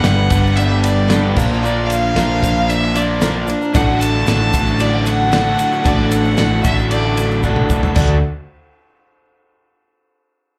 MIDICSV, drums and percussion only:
0, 0, Header, 1, 2, 480
1, 0, Start_track
1, 0, Key_signature, 2, "major"
1, 0, Tempo, 526778
1, 1479, Time_signature, 4, 2, 24, 8
1, 9648, End_track
2, 0, Start_track
2, 0, Title_t, "Drums"
2, 35, Note_on_c, 9, 38, 113
2, 35, Note_on_c, 9, 51, 99
2, 40, Note_on_c, 9, 82, 88
2, 126, Note_off_c, 9, 38, 0
2, 126, Note_off_c, 9, 51, 0
2, 131, Note_off_c, 9, 82, 0
2, 276, Note_on_c, 9, 51, 84
2, 282, Note_on_c, 9, 36, 101
2, 287, Note_on_c, 9, 82, 99
2, 367, Note_off_c, 9, 51, 0
2, 373, Note_off_c, 9, 36, 0
2, 378, Note_off_c, 9, 82, 0
2, 420, Note_on_c, 9, 82, 30
2, 511, Note_off_c, 9, 82, 0
2, 517, Note_on_c, 9, 51, 106
2, 539, Note_on_c, 9, 82, 74
2, 608, Note_off_c, 9, 51, 0
2, 630, Note_off_c, 9, 82, 0
2, 762, Note_on_c, 9, 51, 97
2, 781, Note_on_c, 9, 82, 93
2, 853, Note_off_c, 9, 51, 0
2, 872, Note_off_c, 9, 82, 0
2, 1002, Note_on_c, 9, 38, 116
2, 1002, Note_on_c, 9, 51, 111
2, 1014, Note_on_c, 9, 82, 80
2, 1093, Note_off_c, 9, 38, 0
2, 1093, Note_off_c, 9, 51, 0
2, 1105, Note_off_c, 9, 82, 0
2, 1243, Note_on_c, 9, 49, 95
2, 1247, Note_on_c, 9, 36, 98
2, 1265, Note_on_c, 9, 82, 90
2, 1334, Note_off_c, 9, 49, 0
2, 1338, Note_off_c, 9, 36, 0
2, 1356, Note_off_c, 9, 82, 0
2, 1392, Note_on_c, 9, 82, 26
2, 1483, Note_off_c, 9, 82, 0
2, 1506, Note_on_c, 9, 82, 76
2, 1597, Note_off_c, 9, 82, 0
2, 1731, Note_on_c, 9, 51, 87
2, 1747, Note_on_c, 9, 82, 111
2, 1822, Note_off_c, 9, 51, 0
2, 1838, Note_off_c, 9, 82, 0
2, 1970, Note_on_c, 9, 38, 107
2, 1970, Note_on_c, 9, 51, 96
2, 1988, Note_on_c, 9, 82, 80
2, 2062, Note_off_c, 9, 38, 0
2, 2062, Note_off_c, 9, 51, 0
2, 2079, Note_off_c, 9, 82, 0
2, 2212, Note_on_c, 9, 36, 90
2, 2217, Note_on_c, 9, 51, 80
2, 2226, Note_on_c, 9, 82, 99
2, 2303, Note_off_c, 9, 36, 0
2, 2309, Note_off_c, 9, 51, 0
2, 2317, Note_off_c, 9, 82, 0
2, 2458, Note_on_c, 9, 51, 103
2, 2461, Note_on_c, 9, 82, 72
2, 2549, Note_off_c, 9, 51, 0
2, 2552, Note_off_c, 9, 82, 0
2, 2693, Note_on_c, 9, 51, 76
2, 2696, Note_on_c, 9, 82, 84
2, 2784, Note_off_c, 9, 51, 0
2, 2788, Note_off_c, 9, 82, 0
2, 2930, Note_on_c, 9, 82, 93
2, 2932, Note_on_c, 9, 38, 107
2, 2932, Note_on_c, 9, 51, 100
2, 3021, Note_off_c, 9, 82, 0
2, 3024, Note_off_c, 9, 38, 0
2, 3024, Note_off_c, 9, 51, 0
2, 3167, Note_on_c, 9, 82, 99
2, 3185, Note_on_c, 9, 51, 69
2, 3258, Note_off_c, 9, 82, 0
2, 3276, Note_off_c, 9, 51, 0
2, 3295, Note_on_c, 9, 82, 30
2, 3386, Note_off_c, 9, 82, 0
2, 3410, Note_on_c, 9, 82, 91
2, 3416, Note_on_c, 9, 36, 120
2, 3419, Note_on_c, 9, 51, 115
2, 3501, Note_off_c, 9, 82, 0
2, 3507, Note_off_c, 9, 36, 0
2, 3510, Note_off_c, 9, 51, 0
2, 3657, Note_on_c, 9, 82, 116
2, 3666, Note_on_c, 9, 51, 81
2, 3748, Note_off_c, 9, 82, 0
2, 3757, Note_off_c, 9, 51, 0
2, 3888, Note_on_c, 9, 82, 87
2, 3901, Note_on_c, 9, 38, 115
2, 3901, Note_on_c, 9, 51, 91
2, 3979, Note_off_c, 9, 82, 0
2, 3992, Note_off_c, 9, 38, 0
2, 3992, Note_off_c, 9, 51, 0
2, 4130, Note_on_c, 9, 82, 97
2, 4135, Note_on_c, 9, 36, 94
2, 4140, Note_on_c, 9, 51, 78
2, 4221, Note_off_c, 9, 82, 0
2, 4226, Note_off_c, 9, 36, 0
2, 4231, Note_off_c, 9, 51, 0
2, 4252, Note_on_c, 9, 82, 28
2, 4343, Note_off_c, 9, 82, 0
2, 4366, Note_on_c, 9, 82, 77
2, 4376, Note_on_c, 9, 51, 122
2, 4457, Note_off_c, 9, 82, 0
2, 4467, Note_off_c, 9, 51, 0
2, 4609, Note_on_c, 9, 82, 86
2, 4619, Note_on_c, 9, 51, 85
2, 4700, Note_off_c, 9, 82, 0
2, 4710, Note_off_c, 9, 51, 0
2, 4848, Note_on_c, 9, 82, 75
2, 4857, Note_on_c, 9, 38, 111
2, 4857, Note_on_c, 9, 51, 106
2, 4940, Note_off_c, 9, 82, 0
2, 4948, Note_off_c, 9, 38, 0
2, 4948, Note_off_c, 9, 51, 0
2, 5093, Note_on_c, 9, 51, 74
2, 5093, Note_on_c, 9, 82, 90
2, 5184, Note_off_c, 9, 51, 0
2, 5184, Note_off_c, 9, 82, 0
2, 5216, Note_on_c, 9, 82, 27
2, 5307, Note_off_c, 9, 82, 0
2, 5334, Note_on_c, 9, 82, 74
2, 5336, Note_on_c, 9, 36, 127
2, 5336, Note_on_c, 9, 51, 119
2, 5425, Note_off_c, 9, 82, 0
2, 5427, Note_off_c, 9, 36, 0
2, 5427, Note_off_c, 9, 51, 0
2, 5571, Note_on_c, 9, 82, 102
2, 5573, Note_on_c, 9, 51, 88
2, 5662, Note_off_c, 9, 82, 0
2, 5664, Note_off_c, 9, 51, 0
2, 5689, Note_on_c, 9, 82, 33
2, 5780, Note_off_c, 9, 82, 0
2, 5804, Note_on_c, 9, 82, 73
2, 5812, Note_on_c, 9, 38, 117
2, 5812, Note_on_c, 9, 51, 103
2, 5895, Note_off_c, 9, 82, 0
2, 5903, Note_off_c, 9, 38, 0
2, 5903, Note_off_c, 9, 51, 0
2, 6052, Note_on_c, 9, 82, 94
2, 6056, Note_on_c, 9, 51, 79
2, 6057, Note_on_c, 9, 36, 95
2, 6143, Note_off_c, 9, 82, 0
2, 6147, Note_off_c, 9, 51, 0
2, 6148, Note_off_c, 9, 36, 0
2, 6182, Note_on_c, 9, 82, 28
2, 6273, Note_off_c, 9, 82, 0
2, 6295, Note_on_c, 9, 51, 118
2, 6298, Note_on_c, 9, 82, 65
2, 6386, Note_off_c, 9, 51, 0
2, 6389, Note_off_c, 9, 82, 0
2, 6536, Note_on_c, 9, 51, 80
2, 6537, Note_on_c, 9, 82, 87
2, 6627, Note_off_c, 9, 51, 0
2, 6629, Note_off_c, 9, 82, 0
2, 6659, Note_on_c, 9, 82, 31
2, 6750, Note_off_c, 9, 82, 0
2, 6771, Note_on_c, 9, 82, 67
2, 6777, Note_on_c, 9, 36, 63
2, 6862, Note_off_c, 9, 82, 0
2, 6868, Note_off_c, 9, 36, 0
2, 6891, Note_on_c, 9, 47, 84
2, 6982, Note_off_c, 9, 47, 0
2, 7015, Note_on_c, 9, 82, 89
2, 7016, Note_on_c, 9, 36, 89
2, 7106, Note_off_c, 9, 82, 0
2, 7107, Note_off_c, 9, 36, 0
2, 7137, Note_on_c, 9, 43, 86
2, 7144, Note_on_c, 9, 82, 28
2, 7228, Note_off_c, 9, 43, 0
2, 7235, Note_off_c, 9, 82, 0
2, 7249, Note_on_c, 9, 57, 99
2, 7255, Note_on_c, 9, 36, 127
2, 7263, Note_on_c, 9, 82, 82
2, 7340, Note_off_c, 9, 57, 0
2, 7346, Note_off_c, 9, 36, 0
2, 7354, Note_off_c, 9, 82, 0
2, 9648, End_track
0, 0, End_of_file